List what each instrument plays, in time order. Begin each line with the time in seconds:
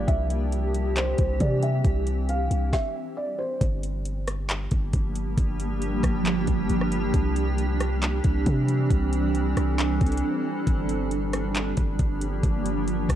Already playing: ambient pad G3 D4
0.08 808-style bass C2, ambient pad E3 C4 G4, felt piano E5, kick, closed hi-hat
0.30 closed hi-hat
0.52 closed hi-hat
0.74 closed hi-hat
0.96 felt piano C5, clap, closed hi-hat
1.18 808-style bass C2, kick, closed hi-hat
1.40 808-style bass C3, felt piano D5, kick, closed hi-hat
1.62 felt piano E5, closed hi-hat
1.85 808-style bass C2, kick, closed hi-hat
2.07 closed hi-hat
2.29 felt piano F5, closed hi-hat
2.51 808-style bass C2, closed hi-hat
2.73 felt piano E5, kick, snare
3.17 felt piano D5
3.38 felt piano C5
3.61 808-style bass G1, ambient pad F3 G3 A#3 D4 G4, kick, closed hi-hat
3.83 closed hi-hat
4.05 closed hi-hat
4.27 cross-stick, closed hi-hat
4.49 clap, closed hi-hat
4.71 808-style bass G1, kick, closed hi-hat
4.93 808-style bass G1, kick, closed hi-hat
5.15 closed hi-hat
5.37 808-style bass G1, kick, closed hi-hat
5.60 closed hi-hat
5.82 closed hi-hat
6.03 808-style bass G1, kick, cross-stick, closed hi-hat
6.26 clap, closed hi-hat
6.47 808-style bass G1, kick, closed hi-hat
6.70 808-style bass G1, closed hi-hat
6.82 cross-stick
6.92 closed hi-hat
7.14 808-style bass C2, ambient pad E3 G3 C4, kick, closed hi-hat
7.36 closed hi-hat
7.58 closed hi-hat
7.80 cross-stick, closed hi-hat
8.02 clap, closed hi-hat
8.24 808-style bass C2, kick, closed hi-hat
8.46 808-style bass C3, kick, closed hi-hat
8.68 closed hi-hat
8.90 808-style bass C2, ambient pad A4, kick, closed hi-hat
9.13 closed hi-hat
9.35 closed hi-hat
9.57 808-style bass C2, cross-stick, closed hi-hat
9.79 clap, closed hi-hat
10.01 808-style bass C2, kick, closed hi-hat
10.06 closed hi-hat
10.12 closed hi-hat
10.17 closed hi-hat
10.67 808-style bass G1, ambient pad F3 G3 A#3 G4, kick, closed hi-hat
10.89 closed hi-hat
11.11 closed hi-hat
11.33 cross-stick, closed hi-hat
11.55 clap, closed hi-hat
11.77 808-style bass G1, kick, closed hi-hat
11.99 808-style bass G1, kick, closed hi-hat
12.21 closed hi-hat
12.43 808-style bass G1, kick, closed hi-hat
12.66 closed hi-hat
12.88 closed hi-hat
13.09 808-style bass G1, kick, cross-stick, closed hi-hat